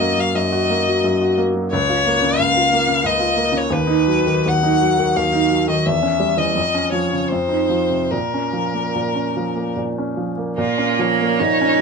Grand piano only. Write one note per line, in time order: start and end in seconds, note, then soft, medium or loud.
0.00 0.34 F#2 soft
0.00 0.29 A#3 soft
0.00 0.12 F#4 soft
0.18 0.46 F#3 soft
0.35 1.02 F#2 soft
0.52 0.80 F#4 soft
0.70 0.98 A#3 soft
0.88 1.15 F#3 soft
1.04 1.70 F#2 soft
1.21 1.49 F#4 soft
1.38 1.65 A#3 soft
1.55 1.72 F#3 soft
1.73 2.38 C#2 soft
1.89 2.17 F4 soft
2.07 2.34 A#3 soft
2.22 2.49 C#3 soft
2.39 3.02 C#2 soft
2.57 2.82 F4 soft
2.73 2.98 A#3 soft
2.88 3.14 C#3 soft
3.04 3.70 C#2 soft
3.20 3.48 F4 soft
3.36 3.65 A#3 soft
3.52 3.71 C#3 soft
3.70 4.44 D#2 soft
3.87 4.20 D#4 soft
4.07 4.39 F#3 soft
4.27 4.58 D#3 soft
4.46 5.15 D#2 soft
4.63 4.92 D#4 soft
4.82 5.10 F#3 soft
4.99 5.27 D#3 soft
5.16 5.84 D#2 soft
5.33 5.61 D#4 soft
5.50 5.79 F#3 soft
5.68 5.86 D#3 soft
5.86 6.54 E2 soft
6.03 6.31 C#4 soft
6.20 6.48 G3 soft
6.37 6.55 E3 soft
6.55 7.27 F2 soft
6.75 7.03 C#4 soft
6.92 7.22 F3 soft
7.13 7.31 C#3 soft
7.32 8.10 F2 soft
7.49 7.82 D#4 soft
7.69 8.03 F3 soft
7.90 8.11 C3 soft
8.12 8.94 A#2 soft
8.34 8.67 C#4 soft
8.53 8.87 F3 soft
8.74 9.08 A#3 soft
8.95 9.75 A#2 soft
9.15 9.49 C#4 soft
9.37 9.69 F3 soft
9.56 9.89 A#3 soft
9.76 10.56 A#2 soft
9.98 10.31 C#4 soft
10.17 10.50 F3 soft
10.37 10.58 A#3 soft
10.58 11.39 A#2 soft
10.78 11.12 C#4 soft
10.99 11.33 F3 soft
11.22 11.53 A#3 soft
11.41 11.81 A#2 soft
11.61 11.81 C#4 soft